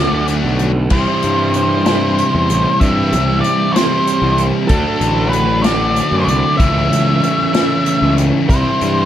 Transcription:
Already playing: A3 D4 F#4 D5
0.00 D3 F#3
0.12 D2
0.28 D3 F#3 A3 D4, closed hi-hat
0.45 B1
0.59 closed hi-hat
0.90 C2 C3 E3 G3 C4 E4 C5, kick, crash
0.95 G4
1.22 G2, closed hi-hat
1.54 C5, closed hi-hat
1.86 C3 E3 G3 C4 E4 G4, snare, closed hi-hat
2.18 closed hi-hat
2.35 E2
2.50 A1, closed hi-hat
2.80 G2 C3 E3 G3 C4 E5, kick, closed hi-hat
2.84 E4 G4
3.13 C2, closed hi-hat
3.41 D5, closed hi-hat
3.72 E3 E4 C5, closed hi-hat
3.76 C3 G3 C4 G4, snare
4.07 closed hi-hat
4.22 C2
4.38 closed hi-hat
4.68 D2 D3 F#3 A3 D4 A4, kick, closed hi-hat
4.72 F#4
5.01 A1, closed hi-hat
5.29 B4, closed hi-hat
5.62 D4 F#4 D5, snare, closed hi-hat
5.67 D3 F#3 A3
5.96 closed hi-hat
6.12 F#2
6.21 C5 D5
6.27 C2, closed hi-hat
6.57 C#2 C#3 E3 C#4 E5, kick, closed hi-hat
6.62 A3 E4
6.91 C#2, closed hi-hat
7.24 closed hi-hat
7.54 C#3 E3 A3 C#4 E4, snare, closed hi-hat
7.86 closed hi-hat
8.02 C#2
8.18 closed hi-hat
8.48 C2 C3 E3 G3 C4 E4 G4 C5 E5 C6, kick, closed hi-hat
8.81 G2, closed hi-hat

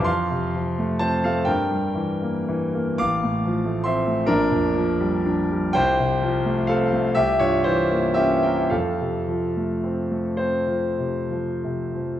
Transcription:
0.00 F2
0.04 F5 C6
0.30 C3
0.54 F3
0.79 A3
0.99 C4 C5 A5
1.24 A3 A4 F5
1.45 G2 A#4 G5
1.71 G3
1.95 E3
2.22 A#3
2.48 E3
2.74 A#3
2.98 A1 F5 D6
3.23 A2
3.45 F3
3.65 A3
3.84 C4 E5 C6
4.07 A3
4.26 A#1 D4 A#4
4.52 F2
4.75 F3
5.00 G3
5.26 D4
5.52 G3
5.73 C2 C5 G5
5.99 C3
6.22 F3
6.46 A3
6.67 C4 A4 F5
6.93 A3
7.15 C2 G4 E5
7.39 G2 F4 C#5
7.64 E3 E4 C5
7.91 A#3
8.14 C#4 G4 E5
8.43 A#3 A#4 G5
8.70 F2 A4 F5
9.00 C3
9.28 F3
9.57 A3
9.84 C4
10.11 A3
10.37 C4 C5
10.67 F3
10.99 C3
11.31 F3
11.64 C3
11.95 F3

